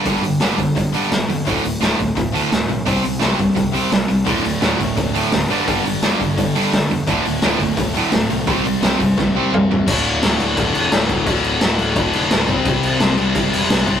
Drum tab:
CC |--------|--------|--------|--------|
HH |oooooooo|oooooooo|oooooooo|oooooooo|
SD |--o---o-|--o---o-|--o---o-|--o---o-|
T2 |--------|--------|--------|--------|
FT |--------|--------|--------|--------|
BD |o--oo---|o--oo---|o--oo---|o--oo---|

CC |--------|--------|--------|xxxxxxxx|
HH |oooooooo|oooooooo|oooo----|--------|
SD |--o---o-|--o---o-|--o-o---|--o---o-|
T2 |--------|--------|------o-|--------|
FT |--------|--------|-------o|--------|
BD |o--oo---|o--oo---|o--oo---|o---o--o|

CC |xxxxxxxx|xxxxxxxx|
HH |--------|--------|
SD |--o---o-|--o---o-|
T2 |--------|--------|
FT |--------|--------|
BD |o---o--o|o---o--o|